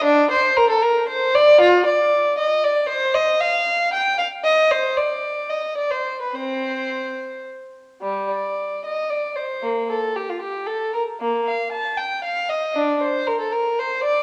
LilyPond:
\new Staff \with { instrumentName = "Violin" } { \time 3/4 \key d \phrygian \tempo 4 = 115 << { d'8 c''8 bes'16 a'16 bes'8 c''8 d''8 | \key c \minor f'8 d''4 ees''8 d''8 c''8 | ees''8 f''4 g''8 f''8 ees''8 | c''8 d''4 ees''8 d''16 c''8 b'16 |
c''2 r4 | \key d \phrygian g8 d''4 ees''8 d''8 c''8 | bes8 a'8 g'16 f'16 g'8 a'8 bes'8 | bes8 f''8 a''8 g''8 f''8 ees''8 |
d'8 c''8 bes'16 a'16 bes'8 c''8 d''8 | } \\ { r2. | r2. | r2. | r2. |
c'4. r4. | r2. | r2. | r2. |
r2. | } >> }